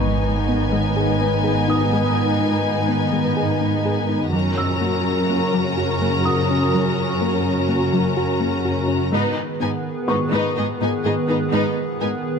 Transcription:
0.00 4.30 G#2 soft
0.00 4.30 D#3 medium
0.00 4.30 B3 soft
0.00 4.30 B3 medium
0.00 0.15 B3 soft
0.00 4.30 D#4 soft
0.00 4.30 D#4 medium
0.00 4.30 B4 soft
0.00 0.93 C#5 soft
0.00 4.30 D#5 soft
0.00 4.30 G#5 soft
0.00 0.93 C#6 soft
0.00 impact soft
0.49 0.63 B3 soft
0.72 0.87 G#3 medium
0.97 1.11 G#4 soft
1.21 1.35 B3 soft
1.44 1.59 G#4 soft
1.68 1.83 D#4 soft
1.68 3.09 D#6 soft
1.93 2.07 G#3 medium
2.41 2.55 B3 soft
2.89 3.03 B3 soft
3.13 3.27 G#3 medium
3.37 3.51 G#4 soft
3.61 3.75 B3 soft
3.86 4.00 G#4 soft
4.09 4.23 D#4 soft
4.32 9.09 F#2 soft
4.32 9.13 C#3 medium
4.32 4.48 F#3 medium
4.32 9.13 C#4 medium
4.32 9.10 C#4 soft
4.32 9.12 F#4 medium
4.32 9.09 F#4 soft
4.32 9.13 A#4 soft
4.32 9.09 A#5 soft
4.58 5.97 E6 soft
4.81 4.96 A#3 soft
5.30 5.44 A#3 soft
5.54 5.68 F#3 medium
5.77 5.92 F#4 soft
6.02 6.16 A#3 soft
6.25 6.41 F#4 soft
6.25 7.65 D#6 soft
6.51 6.65 C#4 soft
6.75 6.89 F#3 medium
7.22 7.36 A#3 soft
7.69 7.83 A#3 soft
7.93 8.08 F#3 medium
8.17 8.31 F#4 medium
8.41 8.55 A#3 soft
8.65 8.80 F#4 medium
8.88 9.03 C#4 soft
9.11 9.21 G#2 medium
9.11 12.39 D#3 medium
9.11 9.27 G#3 medium
9.11 12.39 B3 medium
9.11 9.36 B3 soft
9.11 9.35 D#4 medium
9.11 9.36 D#4 soft
9.11 12.39 G#4 medium
9.11 12.39 B4 medium
9.11 9.36 B4 medium
9.60 9.70 G#2 soft
9.60 9.75 B3 medium
9.60 9.69 B3 soft
9.60 9.70 D#4 soft
9.60 9.70 B4 soft
9.60 9.69 G#5 soft
10.08 10.18 G#2 soft
10.08 10.23 B3 medium
10.08 10.18 B3 soft
10.08 10.17 D#4 soft
10.08 10.17 B4 soft
10.08 11.49 C#6 soft
10.32 10.42 G#2 soft
10.32 10.47 G#3 medium
10.32 10.55 B3 soft
10.32 10.55 D#4 medium
10.32 10.56 D#4 medium
10.32 10.56 B4 medium
10.57 10.66 G#2 soft
10.57 10.65 B3 soft
10.57 10.65 D#4 soft
10.57 10.71 G#4 medium
10.57 10.66 G#4 soft
10.57 10.65 D#5 soft
10.82 10.90 G#2 soft
10.82 10.96 B3 soft
10.82 10.90 B3 soft
10.82 10.90 D#4 soft
10.82 10.90 B4 soft
10.82 10.91 G#5 soft
11.05 11.13 G#2 soft
11.05 11.14 B3 soft
11.05 11.14 D#4 soft
11.05 11.13 G#4 soft
11.05 11.20 G#4 medium
11.05 11.13 D#5 soft
11.29 11.37 G#2 soft
11.29 11.37 B3 soft
11.29 11.37 D#4 soft
11.29 11.44 D#4 soft
11.29 11.38 D#4 soft
11.29 11.37 B4 soft
11.52 11.61 G#2 medium
11.52 11.68 G#3 medium
11.52 11.75 B3 medium
11.52 11.75 D#4 soft
11.52 11.76 D#4 soft
11.52 11.75 B4 soft
12.01 12.10 G#2 soft
12.01 12.16 B3 soft
12.01 12.10 B3 soft
12.01 12.10 D#4 soft
12.01 12.10 B4 soft
12.01 12.09 G#5 soft

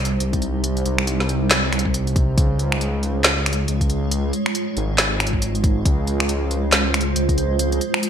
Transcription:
0.00 0.19 C2 loud
0.00 2.33 G3 medium
0.00 2.33 D#4 medium
0.00 2.33 C5 medium
0.05 closed hi-hat medium
0.20 0.84 C2 medium
0.20 closed hi-hat medium
0.33 kick medium
0.33 closed hi-hat soft
0.42 closed hi-hat medium
0.64 closed hi-hat medium
0.77 closed hi-hat soft
0.85 1.71 C2 loud
0.85 closed hi-hat medium
0.98 finger snap medium
1.07 closed hi-hat medium
1.20 snare soft
1.29 closed hi-hat medium
1.51 snare loud
1.51 clap medium
1.51 closed hi-hat medium
1.72 2.36 C2 loud
1.72 finger snap medium
1.72 closed hi-hat soft
1.79 closed hi-hat medium
1.85 kick medium
1.94 closed hi-hat medium
2.07 closed hi-hat soft
2.16 kick loud
2.16 closed hi-hat soft
2.38 3.67 C#2 medium
2.38 8.10 G#3 medium
2.38 8.10 F4 medium
2.38 5.82 C#5 medium
2.38 kick loud
2.38 closed hi-hat medium
2.59 closed hi-hat soft
2.72 finger snap medium
2.81 closed hi-hat medium
3.03 closed hi-hat medium
3.24 snare loud
3.24 clap medium
3.24 closed hi-hat medium
3.46 finger snap medium
3.46 closed hi-hat soft
3.53 closed hi-hat medium
3.68 4.32 C#2 loud
3.68 closed hi-hat medium
3.81 kick medium
3.81 closed hi-hat soft
3.90 closed hi-hat medium
4.11 closed hi-hat medium
4.33 closed hi-hat medium
4.46 finger snap medium
4.55 closed hi-hat medium
4.77 5.84 G#1 medium
4.77 closed hi-hat medium
4.98 snare loud
4.98 clap medium
4.98 closed hi-hat medium
5.20 finger snap medium
5.20 closed hi-hat medium
5.27 closed hi-hat medium
5.33 kick medium
5.42 closed hi-hat medium
5.55 closed hi-hat soft
5.64 kick loud
5.64 closed hi-hat soft
5.85 7.14 C#2 loud
5.85 8.10 C5 medium
5.85 kick loud
5.85 closed hi-hat medium
6.07 closed hi-hat medium
6.20 finger snap medium
6.29 closed hi-hat medium
6.51 closed hi-hat medium
6.72 snare loud
6.72 clap medium
6.72 closed hi-hat medium
6.94 finger snap medium
6.94 closed hi-hat medium
7.01 closed hi-hat medium
7.16 7.80 C#2 loud
7.16 closed hi-hat medium
7.29 kick medium
7.29 closed hi-hat soft
7.38 closed hi-hat medium
7.59 closed hi-hat medium
7.72 closed hi-hat soft
7.81 closed hi-hat medium
7.94 finger snap medium
8.03 closed hi-hat medium

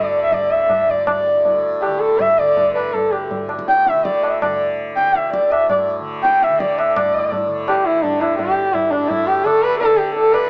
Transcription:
0.00 0.81 D2 medium
0.00 1.34 A2 medium
0.00 0.28 D3 medium
0.00 0.22 D5 medium
0.24 1.87 D3 medium
0.24 0.34 E5 medium
0.31 0.52 D5 medium
0.31 tabla tin medium
0.31 tabla ge medium
0.51 0.92 E5 medium
0.69 tabla na medium
0.69 tabla ge medium
0.81 2.89 D2 medium
0.88 1.08 D5 medium
0.88 tabla ge medium
1.07 1.60 D5 medium
1.07 tabla na loud
1.07 tabla ge medium
1.34 3.42 A2 medium
1.45 tabla tin medium
1.45 tabla ge medium
1.81 2.01 G4 medium
1.81 tabla na medium
1.87 2.38 D3 medium
1.99 2.21 A4 medium
2.19 2.40 E5 loud
2.19 tabla tin medium
2.19 tabla ge medium
2.38 3.94 D3 medium
2.38 2.74 D5 loud
2.57 tabla tin medium
2.57 tabla ge medium
2.75 2.95 B4 medium
2.75 tabla na medium
2.90 4.96 D2 medium
2.90 3.13 A4 medium
2.94 tabla tin medium
2.94 tabla ge medium
3.12 3.31 G4 medium
3.12 tabla na medium
3.31 tabla tin medium
3.31 tabla ge medium
3.43 5.48 A2 medium
3.49 tabla na medium
3.59 tabla ke medium
3.68 3.90 G5 loud
3.68 tabla te medium
3.87 4.07 E5 medium
3.87 tabla te medium
3.94 4.46 D3 medium
4.05 4.26 D5 medium
4.05 tabla ke medium
4.23 4.41 E5 medium
4.23 tabla na medium
4.42 4.59 D5 medium
4.42 tabla na medium
4.42 tabla ge medium
4.46 5.99 D3 medium
4.96 8.44 D2 medium
4.96 5.16 G5 medium
4.96 tabla te medium
5.15 5.32 E5 medium
5.15 tabla te medium
5.33 5.53 D5 medium
5.33 tabla ke medium
5.49 6.96 A2 medium
5.49 5.70 E5 medium
5.49 tabla na medium
5.70 5.87 D5 medium
5.70 tabla na medium
5.70 tabla ge medium
5.99 6.49 D3 medium
6.23 6.44 G5 medium
6.23 tabla te medium
6.42 6.62 E5 medium
6.42 tabla te medium
6.49 7.47 D3 medium
6.60 6.80 D5 medium
6.60 tabla ke medium
6.78 6.96 E5 medium
6.78 tabla na medium
6.96 8.95 A2 medium
6.96 7.46 D5 medium
6.96 tabla na loud
6.96 tabla ge loud
7.32 tabla tin medium
7.32 tabla ge medium
7.47 7.95 D3 medium
7.68 7.87 G4 medium
7.68 tabla na medium
7.85 8.05 E4 medium
7.95 9.44 D3 medium
8.04 8.23 D4 medium
8.04 tabla tin medium
8.04 tabla ge medium
8.21 8.39 E4 medium
8.21 tabla na medium
8.39 8.75 G4 loud
8.39 tabla tin medium
8.39 tabla ge medium
8.44 10.43 D2 medium
8.74 8.92 E4 medium
8.74 tabla tin medium
8.74 tabla ge medium
8.91 9.10 D4 medium
8.91 tabla na medium
8.95 10.50 A2 medium
9.09 9.28 E4 medium
9.09 tabla tin medium
9.09 tabla ge medium
9.26 9.46 G4 medium
9.44 9.93 D3 medium
9.44 9.64 A4 loud
9.44 tabla na medium
9.62 9.79 B4 loud
9.79 9.98 A4 loud
9.79 tabla tin medium
9.93 10.50 D3 medium
9.93 10.14 G4 loud
10.15 10.34 A4 loud
10.15 tabla tin medium
10.33 10.50 B4 loud
10.33 tabla na medium
10.43 10.50 D2 medium

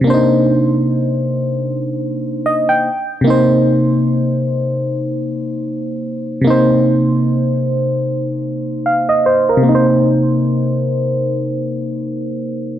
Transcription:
0.01 2.79 C3 medium
0.01 2.81 A#3 medium
0.07 0.14 D4 soft
0.07 2.84 C5 medium
0.14 2.85 D#4 medium
2.46 2.67 D#5 medium
2.69 3.21 G5 medium
3.21 6.39 C3 medium
3.21 6.41 A#3 medium
3.27 6.42 D#4 medium
3.27 6.44 C5 medium
6.41 9.56 C3 medium
6.41 9.61 A#3 medium
6.47 9.62 D#4 medium
6.47 8.84 C5 medium
8.86 9.08 F5 medium
9.09 9.25 D#5 medium
9.26 9.48 C5 medium
9.49 9.87 A#4 medium
9.57 12.79 C3 medium
9.63 12.79 A#3 medium
9.69 12.79 D#4 medium
9.75 12.79 C5 medium

